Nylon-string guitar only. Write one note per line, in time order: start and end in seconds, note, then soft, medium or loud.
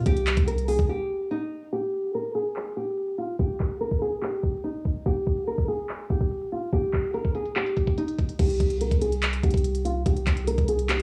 0.06 0.45 G4 loud
0.48 0.64 A#4 medium
0.68 0.85 G#4 medium
0.89 1.28 G4 medium
1.31 1.70 D#4 medium
1.73 2.12 G4 loud
2.15 2.31 A#4 medium
2.35 2.74 G#4 medium
2.77 3.16 G4 medium
3.18 3.35 F4 medium
3.40 3.79 G4 medium
3.81 3.98 A#4 medium
4.02 4.19 G#4 medium
4.22 4.61 G4 medium
4.64 5.03 D#4 medium
5.06 5.45 G4 loud
5.47 5.64 A#4 medium
5.68 6.07 G#4 medium
6.10 6.49 G4 medium
6.52 6.69 F4 medium
6.73 7.12 G4 loud
7.14 7.31 A#4 medium
7.35 7.52 G#4 medium
7.56 7.95 G4 medium
7.98 8.37 D#4 medium
8.39 8.79 G4 loud
8.81 8.98 A#4 medium
9.02 9.41 G#4 medium
9.44 9.83 G4 medium
9.85 10.02 F4 medium
10.06 10.45 G4 medium
10.47 10.64 A#4 medium
10.68 10.85 G#4 medium
10.89 11.02 G4 medium